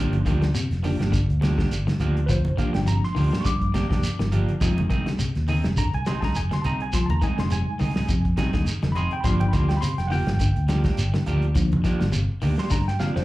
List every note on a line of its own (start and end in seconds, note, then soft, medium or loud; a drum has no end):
0.00 0.21 G1 medium
0.00 0.13 F3 loud
0.00 0.15 F3 medium
0.00 0.36 F3 medium
0.00 0.15 A#3 medium
0.00 0.37 A#3 soft
0.00 0.16 D4 medium
0.00 0.37 D4 medium
0.00 0.16 G4 medium
0.00 0.51 C6 loud
0.13 closed hi-hat soft
0.13 high conga medium
0.25 0.50 D2 medium
0.25 0.36 D#3 medium
0.25 0.45 F3 medium
0.25 0.45 A#3 medium
0.25 0.45 D4 medium
0.25 0.45 G4 medium
0.25 kick medium
0.25 closed hi-hat medium
0.25 shekere soft
0.42 0.49 D3 medium
0.42 snare medium
0.42 closed hi-hat soft
0.55 0.71 C3 medium
0.55 closed hi-hat medium
0.55 shekere loud
0.71 0.95 F1 loud
0.71 snare soft
0.71 closed hi-hat soft
0.83 1.01 D#3 medium
0.83 1.00 F3 medium
0.83 1.10 F3 soft
0.83 1.11 A#3 soft
0.83 0.99 D4 medium
0.83 1.11 D4 medium
0.83 0.98 G4 medium
0.83 muted clean electric guitar stroke medium
0.83 open hi-hat medium
0.83 high conga loud
0.83 shekere soft
0.99 1.24 G1 medium
0.99 1.16 A#3 soft
0.99 1.16 D4 medium
0.99 1.16 G4 medium
0.99 snare medium
0.99 closed hi-hat soft
1.12 1.29 D3 medium
1.12 kick medium
1.12 closed hi-hat medium
1.12 shekere medium
1.29 1.64 D2 medium
1.29 closed hi-hat soft
1.41 1.51 C3 medium
1.41 1.58 F3 medium
1.41 1.58 A#3 medium
1.41 1.58 D4 medium
1.41 1.57 G4 medium
1.41 snare medium
1.41 closed hi-hat medium
1.41 high conga medium
1.41 shekere soft
1.58 1.75 D3 medium
1.58 1.75 A#3 soft
1.58 1.75 D4 medium
1.58 1.74 G4 medium
1.58 kick medium
1.58 snare medium
1.58 closed hi-hat soft
1.71 1.85 G1 medium
1.71 closed hi-hat medium
1.71 shekere medium
1.87 2.04 D#3 medium
1.87 snare medium
1.87 closed hi-hat soft
1.87 high conga medium
2.00 2.47 D2 medium
2.00 2.19 F3 medium
2.00 2.19 A#3 medium
2.00 2.19 D4 medium
2.00 2.19 G4 medium
2.00 closed hi-hat medium
2.00 low conga medium
2.00 shekere soft
2.17 closed hi-hat soft
2.26 2.45 F3 medium
2.26 2.30 B4 medium
2.26 kick loud
2.26 closed hi-hat medium
2.26 low conga medium
2.26 shekere medium
2.31 2.58 C5 medium
2.45 2.56 F1 medium
2.45 closed hi-hat soft
2.45 high conga medium
2.57 2.67 D#3 medium
2.57 4.57 F3 soft
2.57 2.77 F3 medium
2.57 2.77 A#3 medium
2.57 4.57 A#3 soft
2.57 4.58 D4 medium
2.57 2.77 D4 medium
2.57 2.77 G4 medium
2.57 2.74 F5 medium
2.57 kick medium
2.57 closed hi-hat medium
2.57 shekere soft
2.73 2.99 G1 medium
2.73 2.81 D3 medium
2.73 2.87 G5 medium
2.73 snare medium
2.73 closed hi-hat soft
2.86 3.03 C3 medium
2.86 3.03 A#5 loud
2.86 closed hi-hat medium
2.86 shekere loud
3.04 3.45 C6 medium
3.04 snare soft
3.15 3.30 D2 medium
3.15 3.32 D#3 medium
3.15 3.32 F3 medium
3.15 3.32 A#3 medium
3.15 3.31 D4 medium
3.15 3.31 G4 medium
3.15 open hi-hat medium
3.15 high conga medium
3.15 shekere soft
3.32 3.49 A#3 soft
3.32 3.49 D4 soft
3.32 3.48 G4 soft
3.32 snare medium
3.32 low conga medium
3.41 3.61 D3 medium
3.41 3.45 C#6 medium
3.45 3.69 G2 loud
3.45 5.16 D6 loud
3.45 kick medium
3.45 closed hi-hat medium
3.45 shekere loud
3.61 kick medium
3.61 closed hi-hat soft
3.74 3.83 C3 medium
3.74 3.89 A#3 medium
3.74 3.89 D4 medium
3.74 3.89 G4 medium
3.74 kick medium
3.74 snare medium
3.74 closed hi-hat medium
3.74 high conga loud
3.74 shekere soft
3.90 4.01 F1 medium
3.90 4.07 D3 medium
3.90 4.07 A#3 soft
3.90 4.07 D4 soft
3.90 4.06 G4 medium
3.90 kick medium
3.90 snare medium
3.90 closed hi-hat soft
4.03 closed hi-hat medium
4.03 shekere medium
4.19 4.44 G1 medium
4.19 4.36 D#3 medium
4.19 snare medium
4.19 closed hi-hat soft
4.19 high conga medium
4.32 4.51 F3 medium
4.32 4.51 A#3 medium
4.32 4.51 D4 medium
4.32 4.51 G4 medium
4.32 closed hi-hat medium
4.32 low conga medium
4.32 shekere soft
4.48 closed hi-hat soft
4.48 high conga medium
4.61 4.86 F1 medium
4.61 4.78 F3 medium
4.61 5.01 G3 medium
4.61 5.01 G#3 soft
4.61 4.80 C4 medium
4.61 4.80 D#4 medium
4.61 5.02 D#4 medium
4.61 4.80 G#4 medium
4.61 kick loud
4.61 closed hi-hat medium
4.61 low conga medium
4.61 shekere medium
4.77 closed hi-hat soft
4.77 high conga medium
4.90 5.14 C2 medium
4.90 4.99 D#3 medium
4.90 5.09 C4 medium
4.90 5.09 D#4 medium
4.90 5.09 G#4 medium
4.90 kick medium
4.90 closed hi-hat medium
4.90 shekere soft
5.06 5.14 D3 medium
5.06 snare medium
5.06 closed hi-hat soft
5.19 5.36 C3 medium
5.19 closed hi-hat medium
5.19 shekere loud
5.35 5.60 D#2 loud
5.35 snare soft
5.35 closed hi-hat soft
5.48 5.65 D#3 medium
5.48 5.67 C4 medium
5.48 5.67 D#4 medium
5.48 5.68 G#4 medium
5.48 open hi-hat medium
5.48 high conga medium
5.48 shekere soft
5.64 5.89 F1 medium
5.64 snare medium
5.64 closed hi-hat soft
5.77 5.94 D3 medium
5.77 5.93 A#5 loud
5.77 kick medium
5.77 closed hi-hat medium
5.77 shekere medium
5.94 6.29 C2 medium
5.94 6.06 G#5 loud
5.94 closed hi-hat soft
6.06 6.16 C3 medium
6.06 6.23 C4 medium
6.06 6.22 D#4 medium
6.06 6.21 G#4 medium
6.06 6.22 C6 medium
6.06 snare medium
6.06 closed hi-hat medium
6.06 high conga loud
6.06 shekere soft
6.21 6.39 D3 medium
6.21 6.39 D#4 soft
6.21 6.39 G#4 medium
6.21 6.23 A5 medium
6.21 kick medium
6.21 snare medium
6.21 closed hi-hat soft
6.25 6.36 A#5 loud
6.35 6.49 F1 medium
6.35 6.51 G#5 medium
6.35 closed hi-hat medium
6.35 shekere medium
6.51 6.64 C6 medium
6.51 muted clean electric guitar stroke medium
6.51 snare medium
6.51 closed hi-hat soft
6.51 high conga medium
6.62 7.09 C2 medium
6.62 6.83 C4 medium
6.62 6.83 D#4 medium
6.62 6.84 G#4 medium
6.62 6.65 A5 medium
6.62 closed hi-hat medium
6.62 high conga medium
6.62 low conga medium
6.62 shekere soft
6.66 6.80 A#5 loud
6.80 6.93 G#5 medium
6.80 closed hi-hat soft
6.93 7.10 F3 loud
6.93 7.09 C6 medium
6.93 kick loud
6.93 snare soft
6.93 closed hi-hat medium
6.93 low conga medium
6.93 shekere medium
7.06 7.20 D#2 medium
7.06 7.09 A5 medium
7.06 closed hi-hat soft
7.06 high conga medium
7.10 7.22 A#5 loud
7.22 7.31 D#3 medium
7.22 8.05 G3 medium
7.22 8.05 G#3 soft
7.22 7.41 C4 medium
7.22 7.41 D#4 medium
7.22 8.06 D#4 medium
7.22 7.41 G#4 medium
7.22 7.38 G#5 medium
7.22 kick medium
7.22 closed hi-hat medium
7.22 shekere soft
7.38 7.63 F1 medium
7.38 7.45 D3 medium
7.38 7.51 C6 medium
7.38 snare medium
7.38 closed hi-hat soft
7.50 7.67 C3 medium
7.50 8.64 G#5 loud
7.50 closed hi-hat medium
7.50 shekere medium
7.79 7.94 C2 medium
7.79 7.96 D#3 medium
7.79 7.96 C4 medium
7.79 7.95 D#4 medium
7.79 7.94 G#4 medium
7.79 open hi-hat medium
7.79 high conga medium
7.79 shekere soft
7.96 8.13 D#4 soft
7.96 8.12 G#4 medium
7.96 muted fingered electric bass stroke soft
7.96 snare medium
7.96 low conga medium
8.09 8.33 F2 medium
8.09 8.25 C3 medium
8.09 kick medium
8.09 closed hi-hat medium
8.09 shekere medium
8.25 kick medium
8.25 closed hi-hat soft
8.37 8.47 C3 medium
8.37 8.64 G3 medium
8.37 8.64 G#3 soft
8.37 8.54 C4 medium
8.37 8.53 D#4 medium
8.37 8.64 D#4 medium
8.37 8.52 G#4 medium
8.37 kick medium
8.37 snare medium
8.37 closed hi-hat medium
8.37 high conga loud
8.37 shekere soft
8.53 8.65 D#2 medium
8.53 8.71 D3 medium
8.53 8.70 D#4 soft
8.53 8.70 G#4 medium
8.53 kick medium
8.53 snare medium
8.53 closed hi-hat soft
8.66 closed hi-hat medium
8.66 shekere medium
8.82 9.07 F1 medium
8.82 8.99 D#3 medium
8.82 snare medium
8.82 closed hi-hat soft
8.82 high conga medium
8.92 9.14 C4 medium
8.92 9.14 D#4 medium
8.92 8.96 B5 medium
8.92 closed hi-hat medium
8.96 9.15 G#4 medium
8.96 9.11 C6 loud
8.96 low conga medium
8.96 shekere soft
9.11 9.24 G5 loud
9.11 closed hi-hat soft
9.21 9.49 G1 loud
9.21 9.43 F3 medium
9.21 9.64 F3 medium
9.21 9.41 F3 loud
9.21 9.43 A#3 medium
9.21 9.64 A#3 medium
9.21 9.43 D4 medium
9.21 9.43 G4 medium
9.21 9.24 B5 medium
9.21 kick loud
9.21 closed hi-hat medium
9.25 9.65 D4 medium
9.25 9.40 C6 loud
9.25 low conga medium
9.25 shekere medium
9.40 9.52 G5 loud
9.40 closed hi-hat soft
9.40 high conga medium
9.48 9.52 B5 medium
9.53 9.77 D2 medium
9.53 9.62 D#3 medium
9.53 9.72 F3 medium
9.53 9.72 A#3 medium
9.53 9.72 D4 medium
9.53 9.72 G4 medium
9.53 9.68 C6 medium
9.53 kick medium
9.53 closed hi-hat medium
9.53 shekere soft
9.69 9.81 G5 medium
9.69 snare medium
9.69 closed hi-hat soft
9.77 9.81 B5 medium
9.81 9.99 C3 medium
9.81 9.97 C6 loud
9.81 closed hi-hat medium
9.81 high conga medium
9.81 shekere medium
9.98 10.22 F1 medium
9.98 10.10 G5 medium
9.98 snare soft
9.98 closed hi-hat soft
10.07 10.27 D#3 medium
10.07 10.30 F3 medium
10.07 10.30 A#3 medium
10.07 10.11 F#5 medium
10.07 open hi-hat medium
10.12 10.30 G4 medium
10.12 11.24 G5 loud
10.12 high conga medium
10.12 shekere soft
10.27 10.51 G1 medium
10.27 snare medium
10.27 closed hi-hat soft
10.27 low conga medium
10.39 10.57 D3 loud
10.39 kick medium
10.39 closed hi-hat medium
10.39 shekere medium
10.56 10.91 D2 medium
10.56 closed hi-hat soft
10.68 10.78 D3 medium
10.68 10.85 F3 medium
10.68 10.85 A#3 medium
10.68 10.84 D4 medium
10.68 10.84 G4 medium
10.68 snare medium
10.68 closed hi-hat medium
10.68 high conga medium
10.68 shekere soft
10.84 11.01 D3 medium
10.84 11.02 A#3 soft
10.84 11.02 D4 medium
10.84 11.01 G4 medium
10.84 kick medium
10.84 snare medium
10.84 closed hi-hat soft
10.97 11.11 G1 medium
10.97 closed hi-hat medium
10.97 shekere medium
11.14 11.30 D#3 medium
11.14 snare medium
11.14 closed hi-hat soft
11.14 high conga medium
11.26 11.73 D2 medium
11.26 11.45 F3 medium
11.26 11.45 A#3 medium
11.26 11.46 D4 medium
11.26 11.46 G4 medium
11.26 closed hi-hat medium
11.26 high conga medium
11.26 low conga medium
11.26 shekere soft
11.42 closed hi-hat soft
11.55 11.95 F3 medium
11.55 11.72 F3 loud
11.55 11.95 A#3 medium
11.55 11.96 D4 medium
11.55 kick loud
11.55 closed hi-hat medium
11.55 low conga medium
11.55 shekere medium
11.72 11.83 F1 medium
11.72 closed hi-hat soft
11.72 high conga medium
11.84 11.93 D#3 medium
11.84 12.03 F3 medium
11.84 12.03 A#3 medium
11.84 12.04 D4 medium
11.84 12.04 G4 medium
11.84 kick medium
11.84 snare soft
11.84 closed hi-hat medium
11.84 shekere soft
12.00 12.25 G1 medium
12.00 12.07 D3 medium
12.00 snare medium
12.00 closed hi-hat soft
12.12 12.29 C3 medium
12.12 closed hi-hat medium
12.12 shekere loud
12.42 12.56 D2 medium
12.42 12.58 D#3 medium
12.42 12.58 A#3 medium
12.42 12.58 D4 medium
12.42 12.57 G4 medium
12.42 open hi-hat medium
12.42 high conga medium
12.42 shekere soft
12.58 12.75 A#3 soft
12.58 12.75 D4 soft
12.58 12.74 G4 soft
12.58 12.71 C6 medium
12.58 snare medium
12.70 12.95 G2 medium
12.70 12.87 D3 medium
12.70 12.86 A#5 loud
12.70 kick medium
12.70 snare medium
12.70 shekere loud
12.88 13.00 G5 medium
12.88 snare soft
13.00 13.10 C3 medium
13.00 13.16 F3 medium
13.00 13.16 A#3 medium
13.00 13.16 D4 medium
13.00 13.15 F5 medium
13.00 muted fingered electric bass stroke soft
13.00 snare medium
13.00 high conga medium
13.00 shekere soft
13.16 13.25 F1 medium
13.16 13.25 D3 medium
13.16 13.25 A#3 soft
13.16 13.25 D4 soft
13.16 13.25 G4 soft
13.16 13.25 C5 medium
13.16 snare medium